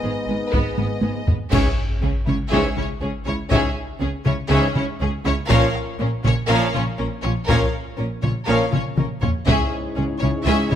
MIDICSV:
0, 0, Header, 1, 11, 480
1, 0, Start_track
1, 0, Key_signature, 4, "minor"
1, 0, Tempo, 497100
1, 1469, Time_signature, 4, 2, 24, 8
1, 10384, End_track
2, 0, Start_track
2, 0, Title_t, "Trumpet section"
2, 0, Program_c, 0, 61
2, 0, Note_on_c, 0, 75, 78
2, 1186, Note_off_c, 0, 75, 0
2, 1468, Note_on_c, 0, 73, 67
2, 1635, Note_off_c, 0, 73, 0
2, 2424, Note_on_c, 0, 73, 75
2, 2593, Note_off_c, 0, 73, 0
2, 3378, Note_on_c, 0, 73, 71
2, 3549, Note_off_c, 0, 73, 0
2, 4346, Note_on_c, 0, 73, 85
2, 4514, Note_off_c, 0, 73, 0
2, 5307, Note_on_c, 0, 73, 94
2, 5475, Note_off_c, 0, 73, 0
2, 6271, Note_on_c, 0, 73, 87
2, 6437, Note_off_c, 0, 73, 0
2, 7217, Note_on_c, 0, 73, 83
2, 7388, Note_off_c, 0, 73, 0
2, 8179, Note_on_c, 0, 73, 75
2, 8349, Note_off_c, 0, 73, 0
2, 9143, Note_on_c, 0, 73, 78
2, 10384, Note_off_c, 0, 73, 0
2, 10384, End_track
3, 0, Start_track
3, 0, Title_t, "Violin section"
3, 0, Program_c, 1, 48
3, 0, Note_on_c, 1, 75, 88
3, 1235, Note_off_c, 1, 75, 0
3, 1479, Note_on_c, 1, 76, 71
3, 1697, Note_off_c, 1, 76, 0
3, 1961, Note_on_c, 1, 68, 67
3, 2038, Note_off_c, 1, 68, 0
3, 2205, Note_on_c, 1, 73, 65
3, 2282, Note_off_c, 1, 73, 0
3, 2427, Note_on_c, 1, 76, 77
3, 2651, Note_off_c, 1, 76, 0
3, 2681, Note_on_c, 1, 73, 66
3, 2758, Note_off_c, 1, 73, 0
3, 2911, Note_on_c, 1, 68, 64
3, 2989, Note_off_c, 1, 68, 0
3, 3154, Note_on_c, 1, 73, 77
3, 3232, Note_off_c, 1, 73, 0
3, 3394, Note_on_c, 1, 76, 84
3, 3615, Note_off_c, 1, 76, 0
3, 3873, Note_on_c, 1, 68, 74
3, 3950, Note_off_c, 1, 68, 0
3, 4105, Note_on_c, 1, 73, 76
3, 4182, Note_off_c, 1, 73, 0
3, 4347, Note_on_c, 1, 76, 92
3, 4571, Note_off_c, 1, 76, 0
3, 4595, Note_on_c, 1, 73, 69
3, 4672, Note_off_c, 1, 73, 0
3, 4838, Note_on_c, 1, 68, 83
3, 4915, Note_off_c, 1, 68, 0
3, 5082, Note_on_c, 1, 73, 99
3, 5160, Note_off_c, 1, 73, 0
3, 5316, Note_on_c, 1, 77, 120
3, 5535, Note_off_c, 1, 77, 0
3, 5799, Note_on_c, 1, 70, 68
3, 5877, Note_off_c, 1, 70, 0
3, 6043, Note_on_c, 1, 73, 100
3, 6120, Note_off_c, 1, 73, 0
3, 6277, Note_on_c, 1, 77, 122
3, 6496, Note_off_c, 1, 77, 0
3, 6512, Note_on_c, 1, 73, 80
3, 6589, Note_off_c, 1, 73, 0
3, 6746, Note_on_c, 1, 70, 80
3, 6823, Note_off_c, 1, 70, 0
3, 6977, Note_on_c, 1, 73, 90
3, 7054, Note_off_c, 1, 73, 0
3, 7222, Note_on_c, 1, 77, 95
3, 7447, Note_off_c, 1, 77, 0
3, 7706, Note_on_c, 1, 70, 65
3, 7783, Note_off_c, 1, 70, 0
3, 7946, Note_on_c, 1, 73, 75
3, 8023, Note_off_c, 1, 73, 0
3, 8197, Note_on_c, 1, 77, 87
3, 8416, Note_off_c, 1, 77, 0
3, 8441, Note_on_c, 1, 73, 68
3, 8519, Note_off_c, 1, 73, 0
3, 8674, Note_on_c, 1, 70, 54
3, 8751, Note_off_c, 1, 70, 0
3, 8902, Note_on_c, 1, 73, 69
3, 8979, Note_off_c, 1, 73, 0
3, 9151, Note_on_c, 1, 76, 84
3, 9372, Note_off_c, 1, 76, 0
3, 9619, Note_on_c, 1, 68, 67
3, 9697, Note_off_c, 1, 68, 0
3, 9854, Note_on_c, 1, 73, 83
3, 9931, Note_off_c, 1, 73, 0
3, 10096, Note_on_c, 1, 76, 93
3, 10324, Note_off_c, 1, 76, 0
3, 10340, Note_on_c, 1, 73, 76
3, 10384, Note_off_c, 1, 73, 0
3, 10384, End_track
4, 0, Start_track
4, 0, Title_t, "Violin section"
4, 0, Program_c, 2, 48
4, 28, Note_on_c, 2, 68, 56
4, 105, Note_off_c, 2, 68, 0
4, 268, Note_on_c, 2, 71, 54
4, 345, Note_off_c, 2, 71, 0
4, 507, Note_on_c, 2, 71, 81
4, 731, Note_off_c, 2, 71, 0
4, 745, Note_on_c, 2, 71, 55
4, 822, Note_off_c, 2, 71, 0
4, 982, Note_on_c, 2, 68, 50
4, 1059, Note_off_c, 2, 68, 0
4, 1224, Note_on_c, 2, 71, 69
4, 1301, Note_off_c, 2, 71, 0
4, 1462, Note_on_c, 2, 68, 86
4, 1688, Note_off_c, 2, 68, 0
4, 1945, Note_on_c, 2, 61, 61
4, 2022, Note_off_c, 2, 61, 0
4, 2177, Note_on_c, 2, 64, 59
4, 2254, Note_off_c, 2, 64, 0
4, 2421, Note_on_c, 2, 68, 88
4, 2648, Note_off_c, 2, 68, 0
4, 2672, Note_on_c, 2, 64, 68
4, 2749, Note_off_c, 2, 64, 0
4, 2917, Note_on_c, 2, 61, 66
4, 2994, Note_off_c, 2, 61, 0
4, 3153, Note_on_c, 2, 64, 76
4, 3230, Note_off_c, 2, 64, 0
4, 3392, Note_on_c, 2, 68, 97
4, 3614, Note_off_c, 2, 68, 0
4, 3868, Note_on_c, 2, 61, 82
4, 3945, Note_off_c, 2, 61, 0
4, 4107, Note_on_c, 2, 64, 69
4, 4184, Note_off_c, 2, 64, 0
4, 4347, Note_on_c, 2, 68, 96
4, 4571, Note_off_c, 2, 68, 0
4, 4596, Note_on_c, 2, 64, 76
4, 4673, Note_off_c, 2, 64, 0
4, 4835, Note_on_c, 2, 61, 71
4, 4912, Note_off_c, 2, 61, 0
4, 5064, Note_on_c, 2, 64, 94
4, 5142, Note_off_c, 2, 64, 0
4, 5301, Note_on_c, 2, 70, 118
4, 5528, Note_off_c, 2, 70, 0
4, 5793, Note_on_c, 2, 61, 88
4, 5870, Note_off_c, 2, 61, 0
4, 6025, Note_on_c, 2, 65, 74
4, 6103, Note_off_c, 2, 65, 0
4, 6261, Note_on_c, 2, 70, 122
4, 6487, Note_off_c, 2, 70, 0
4, 6515, Note_on_c, 2, 65, 77
4, 6592, Note_off_c, 2, 65, 0
4, 6747, Note_on_c, 2, 61, 73
4, 6824, Note_off_c, 2, 61, 0
4, 6986, Note_on_c, 2, 65, 80
4, 7063, Note_off_c, 2, 65, 0
4, 7216, Note_on_c, 2, 70, 107
4, 7444, Note_off_c, 2, 70, 0
4, 7689, Note_on_c, 2, 61, 64
4, 7766, Note_off_c, 2, 61, 0
4, 7941, Note_on_c, 2, 65, 55
4, 8018, Note_off_c, 2, 65, 0
4, 8174, Note_on_c, 2, 70, 90
4, 8403, Note_off_c, 2, 70, 0
4, 8411, Note_on_c, 2, 65, 58
4, 8488, Note_off_c, 2, 65, 0
4, 8653, Note_on_c, 2, 61, 63
4, 8731, Note_off_c, 2, 61, 0
4, 8900, Note_on_c, 2, 65, 68
4, 8977, Note_off_c, 2, 65, 0
4, 9145, Note_on_c, 2, 68, 105
4, 9369, Note_off_c, 2, 68, 0
4, 9621, Note_on_c, 2, 61, 67
4, 9698, Note_off_c, 2, 61, 0
4, 9863, Note_on_c, 2, 64, 68
4, 9940, Note_off_c, 2, 64, 0
4, 10113, Note_on_c, 2, 68, 87
4, 10333, Note_off_c, 2, 68, 0
4, 10346, Note_on_c, 2, 64, 74
4, 10384, Note_off_c, 2, 64, 0
4, 10384, End_track
5, 0, Start_track
5, 0, Title_t, "French horn section"
5, 0, Program_c, 3, 60
5, 0, Note_on_c, 3, 59, 72
5, 0, Note_on_c, 3, 71, 87
5, 1187, Note_off_c, 3, 71, 0
5, 1189, Note_off_c, 3, 59, 0
5, 1451, Note_on_c, 3, 61, 74
5, 1455, Note_on_c, 3, 68, 69
5, 1624, Note_off_c, 3, 61, 0
5, 1627, Note_off_c, 3, 68, 0
5, 2417, Note_on_c, 3, 68, 77
5, 2423, Note_on_c, 3, 61, 74
5, 2589, Note_off_c, 3, 68, 0
5, 2592, Note_off_c, 3, 61, 0
5, 3370, Note_on_c, 3, 61, 75
5, 3370, Note_on_c, 3, 68, 72
5, 3544, Note_off_c, 3, 61, 0
5, 3544, Note_off_c, 3, 68, 0
5, 4332, Note_on_c, 3, 68, 90
5, 4334, Note_on_c, 3, 61, 81
5, 4505, Note_off_c, 3, 68, 0
5, 4506, Note_off_c, 3, 61, 0
5, 5298, Note_on_c, 3, 61, 100
5, 5301, Note_on_c, 3, 65, 97
5, 5469, Note_off_c, 3, 61, 0
5, 5471, Note_off_c, 3, 65, 0
5, 6261, Note_on_c, 3, 61, 96
5, 6264, Note_on_c, 3, 65, 104
5, 6431, Note_off_c, 3, 61, 0
5, 6433, Note_off_c, 3, 65, 0
5, 7231, Note_on_c, 3, 61, 77
5, 7238, Note_on_c, 3, 65, 87
5, 7397, Note_off_c, 3, 61, 0
5, 7402, Note_off_c, 3, 65, 0
5, 8189, Note_on_c, 3, 65, 71
5, 8190, Note_on_c, 3, 61, 69
5, 8355, Note_off_c, 3, 65, 0
5, 8356, Note_off_c, 3, 61, 0
5, 9154, Note_on_c, 3, 61, 81
5, 9158, Note_on_c, 3, 64, 73
5, 10384, Note_off_c, 3, 61, 0
5, 10384, Note_off_c, 3, 64, 0
5, 10384, End_track
6, 0, Start_track
6, 0, Title_t, "Viola section"
6, 0, Program_c, 4, 48
6, 35, Note_on_c, 4, 59, 56
6, 113, Note_off_c, 4, 59, 0
6, 267, Note_on_c, 4, 59, 51
6, 344, Note_off_c, 4, 59, 0
6, 498, Note_on_c, 4, 59, 84
6, 726, Note_off_c, 4, 59, 0
6, 749, Note_on_c, 4, 59, 64
6, 826, Note_off_c, 4, 59, 0
6, 987, Note_on_c, 4, 59, 59
6, 1064, Note_off_c, 4, 59, 0
6, 1229, Note_on_c, 4, 59, 57
6, 1306, Note_off_c, 4, 59, 0
6, 1473, Note_on_c, 4, 61, 82
6, 1694, Note_off_c, 4, 61, 0
6, 1953, Note_on_c, 4, 61, 62
6, 2030, Note_off_c, 4, 61, 0
6, 2192, Note_on_c, 4, 61, 59
6, 2270, Note_off_c, 4, 61, 0
6, 2437, Note_on_c, 4, 61, 83
6, 2656, Note_off_c, 4, 61, 0
6, 2672, Note_on_c, 4, 61, 80
6, 2749, Note_off_c, 4, 61, 0
6, 2913, Note_on_c, 4, 61, 73
6, 2990, Note_off_c, 4, 61, 0
6, 3143, Note_on_c, 4, 61, 66
6, 3220, Note_off_c, 4, 61, 0
6, 3390, Note_on_c, 4, 61, 81
6, 3613, Note_off_c, 4, 61, 0
6, 3868, Note_on_c, 4, 61, 64
6, 3945, Note_off_c, 4, 61, 0
6, 4105, Note_on_c, 4, 61, 83
6, 4183, Note_off_c, 4, 61, 0
6, 4348, Note_on_c, 4, 61, 101
6, 4571, Note_off_c, 4, 61, 0
6, 4596, Note_on_c, 4, 61, 94
6, 4674, Note_off_c, 4, 61, 0
6, 4836, Note_on_c, 4, 61, 86
6, 4913, Note_off_c, 4, 61, 0
6, 5069, Note_on_c, 4, 61, 88
6, 5146, Note_off_c, 4, 61, 0
6, 5310, Note_on_c, 4, 61, 106
6, 5532, Note_off_c, 4, 61, 0
6, 5789, Note_on_c, 4, 61, 85
6, 5866, Note_off_c, 4, 61, 0
6, 6026, Note_on_c, 4, 61, 99
6, 6103, Note_off_c, 4, 61, 0
6, 6269, Note_on_c, 4, 61, 116
6, 6492, Note_off_c, 4, 61, 0
6, 6508, Note_on_c, 4, 61, 111
6, 6585, Note_off_c, 4, 61, 0
6, 6744, Note_on_c, 4, 61, 81
6, 6821, Note_off_c, 4, 61, 0
6, 6983, Note_on_c, 4, 61, 89
6, 7060, Note_off_c, 4, 61, 0
6, 7222, Note_on_c, 4, 61, 90
6, 7448, Note_off_c, 4, 61, 0
6, 7705, Note_on_c, 4, 61, 75
6, 7782, Note_off_c, 4, 61, 0
6, 7947, Note_on_c, 4, 61, 65
6, 8024, Note_off_c, 4, 61, 0
6, 8175, Note_on_c, 4, 61, 85
6, 8404, Note_off_c, 4, 61, 0
6, 8425, Note_on_c, 4, 61, 77
6, 8502, Note_off_c, 4, 61, 0
6, 8670, Note_on_c, 4, 61, 55
6, 8747, Note_off_c, 4, 61, 0
6, 8902, Note_on_c, 4, 61, 72
6, 8979, Note_off_c, 4, 61, 0
6, 9141, Note_on_c, 4, 61, 87
6, 9367, Note_off_c, 4, 61, 0
6, 9614, Note_on_c, 4, 61, 73
6, 9692, Note_off_c, 4, 61, 0
6, 9865, Note_on_c, 4, 61, 70
6, 9942, Note_off_c, 4, 61, 0
6, 10088, Note_on_c, 4, 61, 85
6, 10317, Note_off_c, 4, 61, 0
6, 10328, Note_on_c, 4, 61, 83
6, 10384, Note_off_c, 4, 61, 0
6, 10384, End_track
7, 0, Start_track
7, 0, Title_t, "Trombone section"
7, 0, Program_c, 5, 61
7, 0, Note_on_c, 5, 44, 92
7, 0, Note_on_c, 5, 56, 86
7, 1187, Note_off_c, 5, 56, 0
7, 1189, Note_off_c, 5, 44, 0
7, 1463, Note_on_c, 5, 44, 68
7, 1465, Note_on_c, 5, 52, 76
7, 1633, Note_off_c, 5, 44, 0
7, 1633, Note_off_c, 5, 52, 0
7, 2431, Note_on_c, 5, 52, 76
7, 2432, Note_on_c, 5, 44, 80
7, 2598, Note_off_c, 5, 44, 0
7, 2598, Note_off_c, 5, 52, 0
7, 3380, Note_on_c, 5, 52, 77
7, 3386, Note_on_c, 5, 44, 78
7, 3550, Note_off_c, 5, 52, 0
7, 3554, Note_off_c, 5, 44, 0
7, 4336, Note_on_c, 5, 52, 94
7, 4337, Note_on_c, 5, 44, 96
7, 4507, Note_off_c, 5, 52, 0
7, 4508, Note_off_c, 5, 44, 0
7, 5304, Note_on_c, 5, 46, 102
7, 5309, Note_on_c, 5, 53, 106
7, 5473, Note_off_c, 5, 46, 0
7, 5476, Note_off_c, 5, 53, 0
7, 6270, Note_on_c, 5, 46, 104
7, 6276, Note_on_c, 5, 53, 113
7, 6436, Note_off_c, 5, 46, 0
7, 6441, Note_off_c, 5, 53, 0
7, 7233, Note_on_c, 5, 46, 84
7, 7233, Note_on_c, 5, 53, 89
7, 7398, Note_off_c, 5, 46, 0
7, 7399, Note_off_c, 5, 53, 0
7, 8178, Note_on_c, 5, 46, 81
7, 8179, Note_on_c, 5, 53, 87
7, 8349, Note_off_c, 5, 46, 0
7, 8349, Note_off_c, 5, 53, 0
7, 9156, Note_on_c, 5, 44, 86
7, 9158, Note_on_c, 5, 56, 82
7, 10384, Note_off_c, 5, 44, 0
7, 10384, Note_off_c, 5, 56, 0
7, 10384, End_track
8, 0, Start_track
8, 0, Title_t, "Cello section"
8, 0, Program_c, 6, 48
8, 37, Note_on_c, 6, 44, 56
8, 114, Note_off_c, 6, 44, 0
8, 280, Note_on_c, 6, 44, 62
8, 357, Note_off_c, 6, 44, 0
8, 520, Note_on_c, 6, 44, 70
8, 598, Note_off_c, 6, 44, 0
8, 757, Note_on_c, 6, 44, 54
8, 834, Note_off_c, 6, 44, 0
8, 990, Note_on_c, 6, 44, 52
8, 1067, Note_off_c, 6, 44, 0
8, 1235, Note_on_c, 6, 44, 50
8, 1312, Note_off_c, 6, 44, 0
8, 1470, Note_on_c, 6, 49, 86
8, 1547, Note_off_c, 6, 49, 0
8, 1957, Note_on_c, 6, 49, 67
8, 2034, Note_off_c, 6, 49, 0
8, 2196, Note_on_c, 6, 49, 69
8, 2273, Note_off_c, 6, 49, 0
8, 2439, Note_on_c, 6, 49, 92
8, 2516, Note_off_c, 6, 49, 0
8, 2674, Note_on_c, 6, 49, 55
8, 2752, Note_off_c, 6, 49, 0
8, 2917, Note_on_c, 6, 49, 54
8, 2994, Note_off_c, 6, 49, 0
8, 3152, Note_on_c, 6, 49, 57
8, 3230, Note_off_c, 6, 49, 0
8, 3389, Note_on_c, 6, 49, 89
8, 3466, Note_off_c, 6, 49, 0
8, 3866, Note_on_c, 6, 49, 68
8, 3943, Note_off_c, 6, 49, 0
8, 4104, Note_on_c, 6, 49, 82
8, 4182, Note_off_c, 6, 49, 0
8, 4344, Note_on_c, 6, 49, 93
8, 4422, Note_off_c, 6, 49, 0
8, 4589, Note_on_c, 6, 49, 67
8, 4666, Note_off_c, 6, 49, 0
8, 4833, Note_on_c, 6, 49, 62
8, 4910, Note_off_c, 6, 49, 0
8, 5068, Note_on_c, 6, 49, 80
8, 5145, Note_off_c, 6, 49, 0
8, 5303, Note_on_c, 6, 46, 116
8, 5381, Note_off_c, 6, 46, 0
8, 5786, Note_on_c, 6, 46, 92
8, 5863, Note_off_c, 6, 46, 0
8, 6029, Note_on_c, 6, 46, 94
8, 6106, Note_off_c, 6, 46, 0
8, 6266, Note_on_c, 6, 46, 107
8, 6343, Note_off_c, 6, 46, 0
8, 6503, Note_on_c, 6, 46, 82
8, 6580, Note_off_c, 6, 46, 0
8, 6753, Note_on_c, 6, 46, 76
8, 6830, Note_off_c, 6, 46, 0
8, 6995, Note_on_c, 6, 46, 70
8, 7072, Note_off_c, 6, 46, 0
8, 7231, Note_on_c, 6, 46, 92
8, 7308, Note_off_c, 6, 46, 0
8, 7710, Note_on_c, 6, 46, 69
8, 7787, Note_off_c, 6, 46, 0
8, 7945, Note_on_c, 6, 46, 72
8, 8022, Note_off_c, 6, 46, 0
8, 8182, Note_on_c, 6, 46, 85
8, 8259, Note_off_c, 6, 46, 0
8, 8420, Note_on_c, 6, 46, 55
8, 8497, Note_off_c, 6, 46, 0
8, 8662, Note_on_c, 6, 46, 54
8, 8739, Note_off_c, 6, 46, 0
8, 8902, Note_on_c, 6, 46, 56
8, 8979, Note_off_c, 6, 46, 0
8, 9140, Note_on_c, 6, 49, 85
8, 9217, Note_off_c, 6, 49, 0
8, 9629, Note_on_c, 6, 49, 66
8, 9707, Note_off_c, 6, 49, 0
8, 9868, Note_on_c, 6, 49, 75
8, 9946, Note_off_c, 6, 49, 0
8, 10105, Note_on_c, 6, 49, 94
8, 10182, Note_off_c, 6, 49, 0
8, 10342, Note_on_c, 6, 49, 71
8, 10384, Note_off_c, 6, 49, 0
8, 10384, End_track
9, 0, Start_track
9, 0, Title_t, "Double bass section"
9, 0, Program_c, 7, 48
9, 27, Note_on_c, 7, 32, 61
9, 105, Note_off_c, 7, 32, 0
9, 264, Note_on_c, 7, 32, 57
9, 341, Note_off_c, 7, 32, 0
9, 513, Note_on_c, 7, 32, 81
9, 590, Note_off_c, 7, 32, 0
9, 755, Note_on_c, 7, 32, 63
9, 832, Note_off_c, 7, 32, 0
9, 992, Note_on_c, 7, 32, 51
9, 1069, Note_off_c, 7, 32, 0
9, 1228, Note_on_c, 7, 32, 58
9, 1305, Note_off_c, 7, 32, 0
9, 1470, Note_on_c, 7, 37, 78
9, 1547, Note_off_c, 7, 37, 0
9, 1950, Note_on_c, 7, 37, 61
9, 2027, Note_off_c, 7, 37, 0
9, 2191, Note_on_c, 7, 37, 59
9, 2268, Note_off_c, 7, 37, 0
9, 2428, Note_on_c, 7, 37, 97
9, 2505, Note_off_c, 7, 37, 0
9, 2668, Note_on_c, 7, 37, 65
9, 2745, Note_off_c, 7, 37, 0
9, 2908, Note_on_c, 7, 37, 54
9, 2985, Note_off_c, 7, 37, 0
9, 3147, Note_on_c, 7, 37, 70
9, 3224, Note_off_c, 7, 37, 0
9, 3387, Note_on_c, 7, 37, 92
9, 3465, Note_off_c, 7, 37, 0
9, 3871, Note_on_c, 7, 37, 62
9, 3948, Note_off_c, 7, 37, 0
9, 4111, Note_on_c, 7, 37, 66
9, 4188, Note_off_c, 7, 37, 0
9, 4347, Note_on_c, 7, 37, 99
9, 4425, Note_off_c, 7, 37, 0
9, 4583, Note_on_c, 7, 37, 71
9, 4661, Note_off_c, 7, 37, 0
9, 4826, Note_on_c, 7, 37, 77
9, 4904, Note_off_c, 7, 37, 0
9, 5068, Note_on_c, 7, 37, 82
9, 5145, Note_off_c, 7, 37, 0
9, 5304, Note_on_c, 7, 34, 115
9, 5381, Note_off_c, 7, 34, 0
9, 5784, Note_on_c, 7, 34, 79
9, 5861, Note_off_c, 7, 34, 0
9, 6029, Note_on_c, 7, 34, 97
9, 6106, Note_off_c, 7, 34, 0
9, 6271, Note_on_c, 7, 34, 114
9, 6348, Note_off_c, 7, 34, 0
9, 6514, Note_on_c, 7, 34, 90
9, 6591, Note_off_c, 7, 34, 0
9, 6755, Note_on_c, 7, 34, 82
9, 6832, Note_off_c, 7, 34, 0
9, 6991, Note_on_c, 7, 34, 81
9, 7069, Note_off_c, 7, 34, 0
9, 7227, Note_on_c, 7, 34, 103
9, 7304, Note_off_c, 7, 34, 0
9, 7705, Note_on_c, 7, 34, 67
9, 7782, Note_off_c, 7, 34, 0
9, 7946, Note_on_c, 7, 34, 68
9, 8023, Note_off_c, 7, 34, 0
9, 8183, Note_on_c, 7, 34, 85
9, 8260, Note_off_c, 7, 34, 0
9, 8418, Note_on_c, 7, 34, 59
9, 8495, Note_off_c, 7, 34, 0
9, 8660, Note_on_c, 7, 34, 61
9, 8738, Note_off_c, 7, 34, 0
9, 8896, Note_on_c, 7, 34, 68
9, 8973, Note_off_c, 7, 34, 0
9, 9148, Note_on_c, 7, 37, 85
9, 9225, Note_off_c, 7, 37, 0
9, 9629, Note_on_c, 7, 37, 64
9, 9707, Note_off_c, 7, 37, 0
9, 9867, Note_on_c, 7, 37, 72
9, 9945, Note_off_c, 7, 37, 0
9, 10098, Note_on_c, 7, 37, 112
9, 10176, Note_off_c, 7, 37, 0
9, 10347, Note_on_c, 7, 37, 72
9, 10384, Note_off_c, 7, 37, 0
9, 10384, End_track
10, 0, Start_track
10, 0, Title_t, "Taiko and cinematic ensemble drums"
10, 516, Note_on_c, 9, 41, 80
10, 613, Note_off_c, 9, 41, 0
10, 753, Note_on_c, 9, 48, 76
10, 850, Note_off_c, 9, 48, 0
10, 994, Note_on_c, 9, 48, 86
10, 1090, Note_off_c, 9, 48, 0
10, 1233, Note_on_c, 9, 43, 88
10, 1330, Note_off_c, 9, 43, 0
10, 1474, Note_on_c, 9, 41, 110
10, 1570, Note_off_c, 9, 41, 0
10, 2193, Note_on_c, 9, 47, 55
10, 2289, Note_off_c, 9, 47, 0
10, 2674, Note_on_c, 9, 47, 53
10, 2771, Note_off_c, 9, 47, 0
10, 3390, Note_on_c, 9, 41, 105
10, 3486, Note_off_c, 9, 41, 0
10, 4112, Note_on_c, 9, 47, 62
10, 4209, Note_off_c, 9, 47, 0
10, 4593, Note_on_c, 9, 47, 55
10, 4690, Note_off_c, 9, 47, 0
10, 5070, Note_on_c, 9, 37, 48
10, 5167, Note_off_c, 9, 37, 0
10, 5314, Note_on_c, 9, 41, 117
10, 5411, Note_off_c, 9, 41, 0
10, 5554, Note_on_c, 9, 37, 44
10, 5651, Note_off_c, 9, 37, 0
10, 6029, Note_on_c, 9, 47, 63
10, 6125, Note_off_c, 9, 47, 0
10, 6513, Note_on_c, 9, 47, 57
10, 6609, Note_off_c, 9, 47, 0
10, 6993, Note_on_c, 9, 37, 49
10, 7089, Note_off_c, 9, 37, 0
10, 7230, Note_on_c, 9, 41, 116
10, 7327, Note_off_c, 9, 41, 0
10, 7948, Note_on_c, 9, 47, 57
10, 8045, Note_off_c, 9, 47, 0
10, 8429, Note_on_c, 9, 47, 90
10, 8526, Note_off_c, 9, 47, 0
10, 8667, Note_on_c, 9, 47, 107
10, 8763, Note_off_c, 9, 47, 0
10, 8911, Note_on_c, 9, 43, 100
10, 9008, Note_off_c, 9, 43, 0
10, 9152, Note_on_c, 9, 41, 105
10, 9249, Note_off_c, 9, 41, 0
10, 9876, Note_on_c, 9, 47, 59
10, 9973, Note_off_c, 9, 47, 0
10, 10351, Note_on_c, 9, 47, 63
10, 10384, Note_off_c, 9, 47, 0
10, 10384, End_track
11, 0, Start_track
11, 0, Title_t, "Drums"
11, 1473, Note_on_c, 9, 35, 84
11, 1473, Note_on_c, 9, 49, 72
11, 1569, Note_off_c, 9, 35, 0
11, 1569, Note_off_c, 9, 49, 0
11, 10384, End_track
0, 0, End_of_file